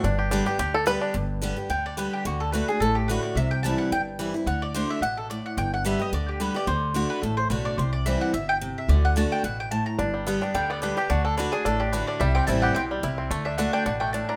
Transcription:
0.04 G1 G2 D4
0.19 G4
0.31 D3 G3 B3 D4 G4
0.46 B3 G4
0.59 D2 D3 G4
0.74 A4
0.86 D3 G3 B3 G4 B4
1.01 D4
1.14 G1 G2
1.42 D3 G3 B3 G4
1.56 B3 G4
1.69 D2 D3 G5
1.86 D5
1.97 D3 G3 B3 G4 B4
2.13 G4
2.25 D2 D3 F#4
2.40 A4
2.52 D3 A3 D4 F#4 B4
2.68 D4 F#4 G#4
2.80 A1 A2 A4
2.95 G4
3.08 D3 A3 D4 F#4 B4
3.23 D5
3.35 C2 C3 E5
3.51 G5
3.63 E3 G3 C4 E4 A5
3.78 F#5
3.91 G1 G2 G5
4.19 E3 G3 C4 E4
4.34 C4 E4
4.46 D2 D3 F#5
4.62 D5
4.74 D3 A3 D4 F#4 C5
4.90 E5
5.01 A1 B2 F#5
5.17 A4
5.30 A2 D5
5.46 F#5
5.57 G1 G2 G5
5.74 F#5
5.85 D3 G3 B3 G4 E5
5.99 B3 G4 D#5
6.12 D2 D3 D5
6.28 G4
6.40 D3 G3 B3 G4 B4
6.54 B3 G4 D5
6.67 D2 D3 C5
6.94 D3 A3 D4 F#4
7.10 B4
7.22 A1 A2 A4
7.37 C5
7.50 B1 D3 A3 D4 F#4 B4
7.65 D5
7.78 C2 C3 C5
7.93 D5
8.06 E3 G3 C4 E4 E5
8.21 F#5
8.34 G1 B2 E5
8.49 G5
8.61 C3
8.78 E5
8.88 D2 D3 D5
9.05 F#5
9.16 D3 A3 D4 F#4 A5
9.32 G5
9.44 A1 B2 F#5
9.60 G5
9.71 A2 A5
9.86 A#5
9.99 G1 G2 D4
10.14 G3
10.27 D3 G3 B3 G4
10.41 B3 D4 G4
10.54 D2 D3 G3 G5
10.70 B3 D5
10.82 D3 G3 B3 D4 G4 B4
10.97 B3 G4
11.10 D2 D3 D4 F#4
11.25 D4 A4
11.37 D3 A3 D4 F#4 B4
11.52 D4 F#4 G#4
11.65 A1 A2 D4 A4
11.80 D4 G4
11.92 D3 A3 D4 F#4 B4
12.07 D4 D5
12.20 C2 C3 G3 E5
12.35 C4 G5
12.47 A1 E3 G3 C4 E4 A5
12.62 G4 F#5
12.75 B1 B2 C4 G5
12.91 G3
13.03 C2 C3 E4
13.18 C4
13.31 D2 D3 A3
13.45 D4 E5
13.58 D3 A3 D4 F#4 F#5
13.73 D4 G5
13.86 A1 B2 D4 F#5
14.00 A3 G5
14.13 A2 D4 A5
14.29 D4 A#5

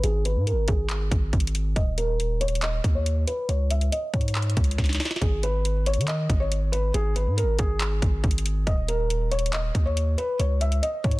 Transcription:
0.03 G#1 G#4, closed hi-hat
0.25 B4, closed hi-hat
0.36 G#2
0.47 A#4, closed hi-hat
0.52 G#1
0.68 G#1 G#4, kick, closed hi-hat
0.89 clap, closed hi-hat
1.11 G#1, kick, closed hi-hat
1.33 G#1, kick, closed hi-hat
1.40 closed hi-hat
1.47 closed hi-hat
1.55 closed hi-hat
1.76 D#1 D#5, kick, closed hi-hat
1.98 A#4, closed hi-hat
2.20 closed hi-hat
2.41 C#5, closed hi-hat
2.48 closed hi-hat
2.55 closed hi-hat
2.62 D#5, clap, closed hi-hat
2.84 D#2, kick, closed hi-hat
2.95 C#5
3.06 closed hi-hat
3.27 B4, closed hi-hat
3.49 C#2 C#5, closed hi-hat
3.71 E5, closed hi-hat
3.81 closed hi-hat
3.92 D#5, closed hi-hat
4.14 G#2 C#5, kick, closed hi-hat
4.21 closed hi-hat
4.28 closed hi-hat
4.35 clap, closed hi-hat
4.42 closed hi-hat
4.50 closed hi-hat
4.57 C#2, kick, closed hi-hat
4.64 closed hi-hat
4.71 closed hi-hat
4.78 C#2, kick, snare, closed hi-hat
4.84 snare, closed hi-hat
4.89 snare, closed hi-hat
4.95 snare
5.00 snare, open hi-hat
5.05 snare
5.11 snare
5.16 snare
5.22 G#1 G#4, kick, closed hi-hat
5.43 B4, closed hi-hat
5.65 closed hi-hat
5.86 C#5, closed hi-hat
5.94 D#3, closed hi-hat
6.01 closed hi-hat
6.07 D#5, clap, closed hi-hat
6.30 G#1, kick, closed hi-hat
6.40 C#5
6.52 closed hi-hat
6.72 B4, closed hi-hat
6.94 G#1 G#4, closed hi-hat
7.16 B4, closed hi-hat
7.27 G#2
7.37 A#4, closed hi-hat
7.43 G#1
7.59 G#1 G#4, kick, closed hi-hat
7.80 clap, closed hi-hat
8.02 G#1, kick, closed hi-hat
8.24 G#1, kick, closed hi-hat
8.31 closed hi-hat
8.38 closed hi-hat
8.46 closed hi-hat
8.67 D#1 D#5, kick, closed hi-hat
8.88 A#4, closed hi-hat
9.10 closed hi-hat
9.31 C#5, closed hi-hat
9.39 closed hi-hat
9.46 closed hi-hat
9.53 D#5, clap, closed hi-hat
9.75 D#2, kick, closed hi-hat
9.86 C#5
9.97 closed hi-hat
10.18 B4, closed hi-hat
10.39 C#2 C#5, closed hi-hat
10.61 E5, closed hi-hat
10.72 closed hi-hat
10.83 D#5, closed hi-hat
11.04 G#2 C#5, kick, closed hi-hat
11.11 closed hi-hat

